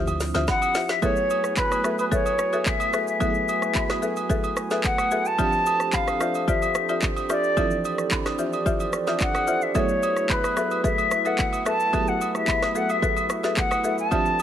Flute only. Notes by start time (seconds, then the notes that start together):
0.48 F#5
0.90 E5
1.03 C#5
1.57 B4
1.99 B4
2.12 C#5
2.66 E5
3.08 E5
4.85 F#5
5.26 A5
5.94 F5
6.48 E5
7.30 D5
9.21 F#5
9.62 E5
9.76 C#5
10.30 B4
10.85 E5
11.26 F#5
11.66 A5
12.08 F#5
12.35 E5
12.76 F#5
12.90 E5
13.58 F#5
13.99 A5